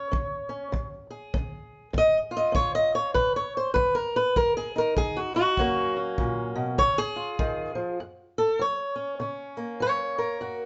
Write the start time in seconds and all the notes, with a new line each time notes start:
Already playing: C#4 C#5
0.12 C#4, kick
0.49 C#4
0.72 C#3, kick
1.10 G#4
1.34 C#4, kick
1.93 C#3, kick
1.98 D#5
2.31 F4
2.37 D#5
2.52 C#4 C#5, kick
2.75 D#5
2.95 C#5
3.14 B2 B4, kick
3.36 C#5
3.57 C5
3.74 F#3 B4, kick
3.95 A#4
4.16 B4
4.36 F#3 A#4, kick
4.57 G#4
4.76 D#4 A#4
4.97 F#3 G#4, kick
5.17 F#4
5.34 D#4 F#4
5.57 F#2 F#3 A#3 C#4, kick
5.96 C#4
6.18 A#2, kick
6.56 B2
6.78 C#3 C#5, kick
6.98 G#4
7.16 F4
7.39 D#3, kick
7.75 F3
8.00 F#2
8.38 A4
8.59 F#3 C#5
8.96 C#4
9.20 C#3 C#4
9.57 A#3
9.80 F#3 C#5
10.18 A#4
10.41 F#2 F#4